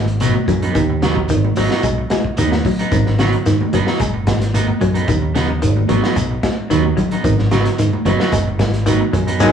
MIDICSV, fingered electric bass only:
0, 0, Header, 1, 3, 480
1, 0, Start_track
1, 0, Key_signature, 5, "minor"
1, 0, Tempo, 541028
1, 672, Time_signature, 4, 2, 24, 8
1, 8447, End_track
2, 0, Start_track
2, 0, Title_t, "Fingered electric bass"
2, 0, Program_c, 0, 33
2, 0, Note_on_c, 0, 32, 71
2, 323, Note_off_c, 0, 32, 0
2, 424, Note_on_c, 0, 42, 83
2, 667, Note_off_c, 0, 42, 0
2, 667, Note_on_c, 0, 39, 100
2, 1150, Note_on_c, 0, 32, 69
2, 1164, Note_off_c, 0, 39, 0
2, 1339, Note_off_c, 0, 32, 0
2, 1395, Note_on_c, 0, 32, 73
2, 1492, Note_off_c, 0, 32, 0
2, 1625, Note_on_c, 0, 35, 75
2, 1816, Note_off_c, 0, 35, 0
2, 2116, Note_on_c, 0, 39, 82
2, 2303, Note_off_c, 0, 39, 0
2, 2588, Note_on_c, 0, 32, 110
2, 2967, Note_off_c, 0, 32, 0
2, 3076, Note_on_c, 0, 44, 77
2, 3173, Note_off_c, 0, 44, 0
2, 3317, Note_on_c, 0, 30, 93
2, 3414, Note_off_c, 0, 30, 0
2, 3549, Note_on_c, 0, 30, 71
2, 3789, Note_off_c, 0, 30, 0
2, 3789, Note_on_c, 0, 32, 67
2, 4167, Note_off_c, 0, 32, 0
2, 4272, Note_on_c, 0, 42, 88
2, 4509, Note_off_c, 0, 42, 0
2, 4509, Note_on_c, 0, 39, 106
2, 4995, Note_on_c, 0, 32, 78
2, 5009, Note_off_c, 0, 39, 0
2, 5183, Note_off_c, 0, 32, 0
2, 5232, Note_on_c, 0, 32, 83
2, 5331, Note_off_c, 0, 32, 0
2, 5468, Note_on_c, 0, 35, 76
2, 5658, Note_off_c, 0, 35, 0
2, 5949, Note_on_c, 0, 39, 87
2, 6139, Note_off_c, 0, 39, 0
2, 6425, Note_on_c, 0, 32, 115
2, 6804, Note_off_c, 0, 32, 0
2, 6910, Note_on_c, 0, 44, 81
2, 7009, Note_off_c, 0, 44, 0
2, 7143, Note_on_c, 0, 30, 96
2, 7245, Note_off_c, 0, 30, 0
2, 7383, Note_on_c, 0, 30, 82
2, 7625, Note_off_c, 0, 30, 0
2, 7625, Note_on_c, 0, 32, 71
2, 8003, Note_off_c, 0, 32, 0
2, 8102, Note_on_c, 0, 42, 90
2, 8337, Note_off_c, 0, 42, 0
2, 8342, Note_on_c, 0, 32, 101
2, 8439, Note_off_c, 0, 32, 0
2, 8447, End_track
3, 0, Start_track
3, 0, Title_t, "Muted fingered electric bass strokes"
3, 3437, Note_on_c, 9, 29, 31
3, 3526, Note_off_c, 9, 29, 0
3, 8447, End_track
0, 0, End_of_file